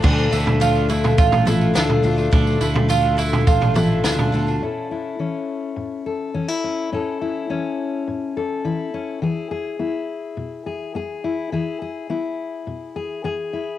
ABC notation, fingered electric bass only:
X:1
M:4/4
L:1/8
Q:1/4=104
K:A
V:1 name="Fingered electric bass" clef=bass
D,, D,,3 A,,,2 D,, D,, | D,, D,,3 A,,,2 D,, D,, | z8 | z8 |
z8 | z8 |]